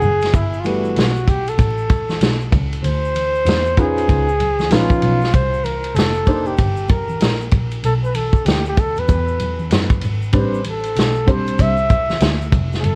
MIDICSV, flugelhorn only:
0, 0, Header, 1, 2, 480
1, 0, Start_track
1, 0, Tempo, 625000
1, 259, Time_signature, 4, 2, 24, 8
1, 9947, End_track
2, 0, Start_track
2, 0, Title_t, "Flugelhorn"
2, 0, Program_c, 0, 56
2, 0, Note_on_c, 0, 68, 125
2, 272, Note_on_c, 0, 64, 92
2, 283, Note_off_c, 0, 68, 0
2, 462, Note_on_c, 0, 65, 75
2, 473, Note_off_c, 0, 64, 0
2, 508, Note_on_c, 0, 66, 81
2, 519, Note_off_c, 0, 65, 0
2, 990, Note_on_c, 0, 67, 88
2, 1002, Note_off_c, 0, 66, 0
2, 1146, Note_on_c, 0, 69, 84
2, 1157, Note_off_c, 0, 67, 0
2, 1948, Note_off_c, 0, 69, 0
2, 2182, Note_on_c, 0, 72, 118
2, 2919, Note_on_c, 0, 68, 109
2, 2930, Note_off_c, 0, 72, 0
2, 3627, Note_on_c, 0, 65, 107
2, 3639, Note_off_c, 0, 68, 0
2, 4104, Note_on_c, 0, 72, 95
2, 4115, Note_off_c, 0, 65, 0
2, 4335, Note_on_c, 0, 70, 91
2, 4347, Note_off_c, 0, 72, 0
2, 4574, Note_on_c, 0, 69, 96
2, 4586, Note_off_c, 0, 70, 0
2, 4969, Note_on_c, 0, 67, 83
2, 4980, Note_off_c, 0, 69, 0
2, 5306, Note_on_c, 0, 70, 90
2, 5318, Note_off_c, 0, 67, 0
2, 5782, Note_off_c, 0, 70, 0
2, 6030, Note_on_c, 0, 69, 89
2, 6094, Note_off_c, 0, 69, 0
2, 6176, Note_on_c, 0, 71, 88
2, 6263, Note_on_c, 0, 69, 90
2, 6275, Note_off_c, 0, 71, 0
2, 6498, Note_on_c, 0, 67, 81
2, 6510, Note_off_c, 0, 69, 0
2, 6646, Note_off_c, 0, 67, 0
2, 6665, Note_on_c, 0, 67, 88
2, 6758, Note_on_c, 0, 69, 95
2, 6770, Note_off_c, 0, 67, 0
2, 6907, Note_on_c, 0, 71, 82
2, 6919, Note_off_c, 0, 69, 0
2, 7469, Note_off_c, 0, 71, 0
2, 7967, Note_on_c, 0, 72, 81
2, 8177, Note_off_c, 0, 72, 0
2, 8215, Note_on_c, 0, 69, 85
2, 8687, Note_on_c, 0, 72, 94
2, 8699, Note_off_c, 0, 69, 0
2, 8918, Note_on_c, 0, 76, 103
2, 8929, Note_off_c, 0, 72, 0
2, 9628, Note_off_c, 0, 76, 0
2, 9825, Note_on_c, 0, 68, 72
2, 9864, Note_on_c, 0, 69, 98
2, 9875, Note_off_c, 0, 68, 0
2, 9947, Note_off_c, 0, 69, 0
2, 9947, End_track
0, 0, End_of_file